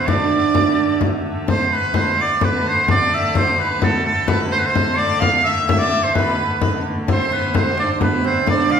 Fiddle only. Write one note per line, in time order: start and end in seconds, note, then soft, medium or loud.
0.07 1.00 D5 medium
1.48 1.69 C5 medium
1.71 1.96 B4 medium
1.95 2.03 C5 medium
2.02 2.09 B4 medium
2.07 2.18 C5 medium
2.19 2.40 D5 medium
2.42 2.66 B4 medium
2.65 2.88 C5 medium
2.89 3.36 D5 medium
3.34 3.59 C5 medium
3.58 3.83 B4 medium
3.81 4.03 A4 medium
4.04 4.29 A4 medium
4.28 4.35 B4 medium
4.34 4.42 A4 medium
4.40 4.53 B4 medium
4.52 4.65 C5 medium
4.66 5.00 C5 medium
4.98 5.23 D5 medium
5.22 5.48 F5 medium
5.46 5.68 E5 medium
5.68 6.05 E5 medium
6.04 6.15 C5 medium
6.16 6.58 B4 medium
6.61 6.83 B4 medium
7.08 7.51 C5 medium
7.55 7.94 C5 medium
7.94 8.03 C5 medium
8.01 8.49 B4 medium
8.48 8.56 D5 medium
8.54 8.62 C5 medium
8.60 8.80 D5 medium